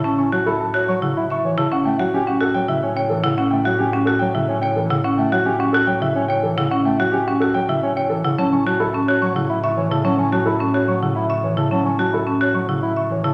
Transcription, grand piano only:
X:1
M:3/4
L:1/16
Q:1/4=108
K:Amix
V:1 name="Grand piano"
a c' a A a c c' f e c' c a | f g f G f A g e c g A f | f g f G f A g e c g A f | f g f G f A g e c g A f |
f g f G f A g e c g A f | a c' a A a c c' f e c' c a | a c' a A a c c' f e c' c a | a c' a A a c c' f e c' c a |]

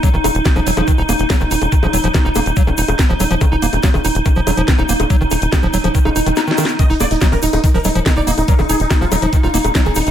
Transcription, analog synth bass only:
X:1
M:4/4
L:1/16
Q:1/4=142
K:Ebm
V:1 name="Analog synth bass" clef=bass
z E,,, E,,, E,,, z E,,, E,,, E,,, z E,,, E,,, E,,, z E,,, E,,, E,,, | z E,,, E,,, E,,, z E,,, E,,, E,,, z E,,, E,,, E,,, z E,,, E,,, E,,, | z E,,, E,,, E,,, z E,,, E,,, E,,, z E,,, E,,, E,,, z E,,, E,,, E,,, | z E,,, E,,, E,,, z E,,, E,,, E,,, z E,,, E,,, E,,, z4 |
z E,,, E,,, E,,, z E,,, E,,, E,,, z E,,, E,,, E,,, z E,,, E,,, E,,, | z E,,, E,,, E,,, z E,,, E,,, E,,, z E,,, E,,, E,,, z E,,, E,,, E,,, |]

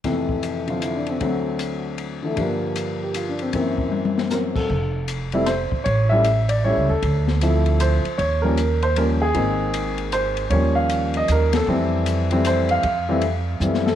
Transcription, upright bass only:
X:1
M:3/4
L:1/8
Q:"Swing" 1/4=155
K:F
V:1 name="Upright bass" clef=bass
z6 | z6 | z6 | z6 |
F,,,4- F,,, z | A,,,4- (3A,,, ^C,, _E,, | D,,4- D,, z | _E,,6 |
_A,,,6 | _E,,4 E,,2 | F,,6 | F,,4 _G,,2 |]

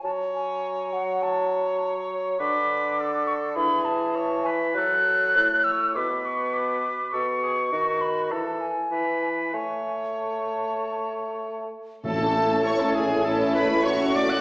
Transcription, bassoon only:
X:1
M:4/4
L:1/8
Q:1/4=101
K:F#dor
V:1 name="Bassoon" clef=bass
F,8 | [K:A] D,4 E,4 | F,2 A,,2 B,,4 | B,,2 ^D,2 E, z E,2 |
A,6- A, z | A,8 |]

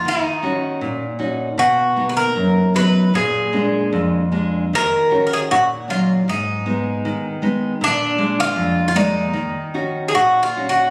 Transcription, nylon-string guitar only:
X:1
M:2/4
L:1/8
Q:1/4=77
K:Ebm
V:1 name="Nylon-string guitar"
E, [DEG] B,, [DEG] | =B,, [^A,=B,^D] ^F,, [^F,B,D] | B,, [A,B,=D] F,, [A,B,D] | E, [DEG] B,, [G,DE] |
A,, [A,CE] E, [A,CE] | B,, [A,B,=D] F,, [A,B,=d] | E, [DEG] B,, [DEG] |]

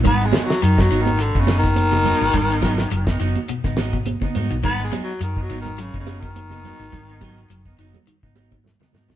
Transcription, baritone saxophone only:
X:1
M:4/4
L:1/8
Q:"Swing 16ths" 1/4=105
K:G#m
V:1 name="Baritone saxophone" clef=bass
(3B, G, F, (3D, F, D, (3=D, C, ^D,- D,2- | D,3 z4 z | (3B, G, F, (3D, F, D, (3C, C, D,- D,2- | D,3 z4 z |]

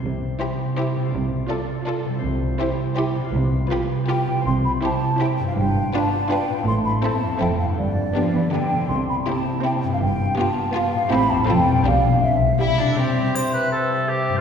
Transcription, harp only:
X:1
M:3/4
L:1/8
Q:1/4=163
K:C
V:1 name="Harp"
[C,G,Ec]6 | [C,A,Fd]6 | [C,G,Ec]6 | [C,G,FB]6 |
[C,G,Ec]6 | [G,,G,FB]6 | [A,,CEA]4 [F,,CEA]2 | [G,,B,DG]6 |
[C,CEG]6 | [G,,B,FG]6 | [A,,CEG]2 [F,,CFA]2 [B,,G,DG]2 | [C,G,CG]6 |
[C,G,EG]6 |]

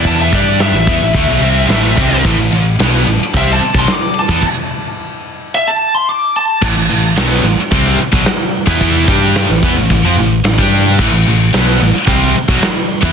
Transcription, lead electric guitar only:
X:1
M:4/4
L:1/16
Q:1/4=110
K:Am
V:1 name="Lead electric guitar"
a e d2 e12 | z8 e a2 c' d'2 a2 | z8 e a2 c' d'2 a2 | z16 |
z16 | z16 |]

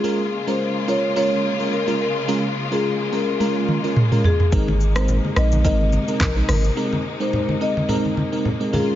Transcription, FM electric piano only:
X:1
M:4/4
L:1/16
Q:"Swing 16ths" 1/4=107
K:Ab
V:1 name="FM electric piano"
[A,DFB] z2 [A,DFB]3 [A,DFB]2 [A,DFB]3 [A,DFB] z [A,DFB] z2 | [A,DFB] z2 [A,DFB]3 [A,DFB]2 [A,DFB]3 [A,DFB] z [A,DFB] z2 | [A,CEB] z2 [A,CEB]3 [A,CEB]2 [A,CEB]3 [A,CEB] z [A,CEB] z2 | [A,CEB] z2 [A,CEB]3 [A,CEB]2 [A,CEB]3 [A,CEB] z [A,CEB] [A,DFB]2 |]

